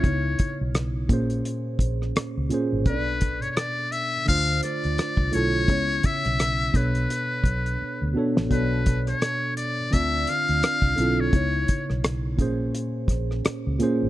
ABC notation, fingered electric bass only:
X:1
M:4/4
L:1/16
Q:"Swing 16ths" 1/4=85
K:Bdor
V:1 name="Fingered electric bass" clef=bass
C,,2 z B,,,3 ^A,,,2 z2 A,,,2 z C,, z G,,, | B,,,4 z4 D,,2 z D,, z =C,, B,,,2 | C,,2 z B,,,3 B,,,2 z2 B,,,2 z D,, z A,,, | B,,,4 z4 D,,2 z D,, z =C,, B,,,2 |
C,,2 z B,,,3 ^A,,,2 z2 A,,,2 z C,, z G,,, |]